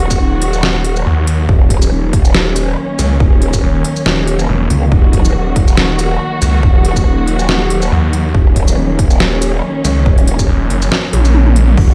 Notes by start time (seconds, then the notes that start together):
Already playing: D#1 D#3 F#3 A#3 F#4
0.11 kick, shaker
0.20 D#1
0.42 closed hi-hat
0.53 shaker
0.63 snare
0.84 closed hi-hat
0.96 shaker
1.06 D#2
1.27 closed hi-hat
1.49 D#1 C#4, kick
1.70 kick, closed hi-hat
1.82 shaker
1.92 D#1
2.13 kick, closed hi-hat
2.25 shaker
2.35 snare
2.56 closed hi-hat, shaker
2.99 C#2, closed hi-hat, shaker
3.20 D#1, kick
3.42 closed hi-hat
3.53 kick, shaker
3.63 D#1
3.85 closed hi-hat
3.96 shaker
4.06 D#1, snare
4.27 closed hi-hat
4.39 shaker
4.49 E1
4.70 C#2, closed hi-hat
4.92 D#1 F#4, kick
5.13 kick, closed hi-hat
5.25 shaker
5.35 D#1
5.56 kick, closed hi-hat
5.68 shaker
5.77 snare
5.99 closed hi-hat, shaker
6.42 C#2, closed hi-hat, shaker
6.63 D#1, kick
6.85 closed hi-hat
6.96 kick, shaker
7.06 D#1
7.28 closed hi-hat
7.39 shaker
7.49 snare
7.70 closed hi-hat
7.82 shaker
7.92 D#2
8.13 closed hi-hat
8.35 D#1 C#4, kick
8.56 kick, closed hi-hat
8.68 shaker
8.77 D#1
8.99 kick, closed hi-hat
9.11 shaker
9.20 snare
9.42 closed hi-hat, shaker
9.85 C#2, closed hi-hat, shaker
10.06 D#1, kick
10.18 closed hi-hat
10.27 closed hi-hat
10.39 kick, shaker
10.49 D#1
10.70 F#1, closed hi-hat
10.82 shaker
10.92 snare
11.13 A#1, closed hi-hat, high tom
11.25 shaker
11.35 mid tom
11.46 mid tom
11.56 closed hi-hat
11.68 mid tom
11.77 D#1 F#4, kick, crash